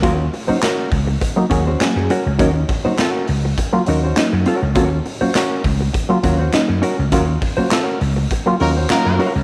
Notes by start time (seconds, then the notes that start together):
0.02 D#2 F#3 A#3 C#4 F4 F#4 A#4, kick, closed hi-hat
0.18 C#4 F4, muted hollow-body jazz guitar stroke
0.33 muted hollow-body jazz guitar stroke, open hi-hat
0.48 F#3 A#3 C#4 D#4 F#4 C5, muted slap bass stroke
0.62 C#4 F4 F#4 A#4, snare, clap, closed hi-hat
0.92 C#2, kick, open hi-hat
1.07 muted hollow-body jazz guitar stroke
1.21 muted hollow-body jazz guitar stroke, kick, closed hi-hat
1.36 F#3 A#3 C#4 D#4, muted hollow-body jazz guitar stroke
1.50 D#2 F#3 A#3 C#4 F#4 G#4 A#4, kick, closed hi-hat
1.67 C#4 F#4 C5
1.80 F#3 A#3 C#4 G#4, muted hollow-body jazz guitar stroke, snare, clap, closed hi-hat
1.96 F#2, muted hollow-body jazz guitar stroke
2.10 C#4 F#4 A#4, closed hi-hat
2.26 C#2, muted hollow-body jazz guitar stroke
2.39 D#2 F#3 A#3 C#4 D#4 F#4 A#4, kick, closed hi-hat
2.54 C#4 F4, muted hollow-body jazz guitar stroke
2.69 muted hollow-body jazz guitar stroke, kick, open hi-hat
2.84 F#3 A#3 C#4 D#4 F#4 C5, muted slap bass stroke
2.99 C4 C#4 F4 A4, snare, clap, closed hi-hat
3.10 C#4 F#4 A#4
3.27 C#2, muted hollow-body jazz guitar stroke, open hi-hat
3.45 muted hollow-body jazz guitar stroke
3.58 muted hollow-body jazz guitar stroke, kick, closed hi-hat
3.72 F#3 A#3 C#4 F4, muted hollow-body jazz guitar stroke
3.86 D#2 F#3 A#3 C#4 D#4 F#4 A#4, closed hi-hat
4.03 C#4 F#4 C5
4.16 F#3 A#3 C#4 D#4, muted hollow-body jazz guitar stroke, snare, clap, closed hi-hat
4.33 F#2, muted hollow-body jazz guitar stroke
4.46 C#4 F#4 A#4, closed hi-hat
4.62 C#2, muted hollow-body jazz guitar stroke
4.75 D#2 F#3 A#3 C#4 F#4 A#4, kick, closed hi-hat
4.91 C#4 F4, muted hollow-body jazz guitar stroke
5.05 muted hollow-body jazz guitar stroke, open hi-hat
5.21 F#3 A#3 C#4 F4 F#4 C5, muted slap bass stroke
5.35 C#4 F4 F#4 A#4, snare, clap, closed hi-hat
5.64 C#2, muted hollow-body jazz guitar stroke, kick, open hi-hat
5.81 muted hollow-body jazz guitar stroke
5.93 muted hollow-body jazz guitar stroke, kick, closed hi-hat
6.09 F#3 A#3 C#4 F4, muted hollow-body jazz guitar stroke
6.23 D#2 F#3 A#3 C#4 F4 F#4 A#4, kick, closed hi-hat
6.39 C#4 F#4 C5
6.52 F#3 A#3 C#4 D#4, snare, clap, closed hi-hat
6.68 F#2, muted hollow-body jazz guitar stroke
6.82 C#4 F#4 A#4, closed hi-hat
6.99 C#2, muted hollow-body jazz guitar stroke
7.12 D#2 F#3 A#3 C#4 F4 F#4 A#4, kick, closed hi-hat
7.28 C#4 F4, muted hollow-body jazz guitar stroke
7.41 muted hollow-body jazz guitar stroke, kick, open hi-hat
7.57 F#3 A#3 C#4 F4 F#4 C5, muted slap bass stroke
7.71 C4 F4 A4, snare, clap, closed hi-hat
7.83 C#4 F#4 A#4
8.01 C#2, muted hollow-body jazz guitar stroke, open hi-hat
8.16 muted hollow-body jazz guitar stroke
8.31 muted hollow-body jazz guitar stroke, kick, closed hi-hat
8.46 F#3 A#3 C#4 F4, muted hollow-body jazz guitar stroke
8.60 D#2 F#3 A#3 C#4 D#4 F4 F#4 A#4, open hi-hat
8.77 C#4 F#4 C5
8.89 F#3 A#3 C#4 D#4 F4 F#4 A#4, snare, clap, closed hi-hat
9.05 F#2, muted hollow-body jazz guitar stroke
9.19 C#4 F#4 A#4, open hi-hat
9.36 C#2, muted hollow-body jazz guitar stroke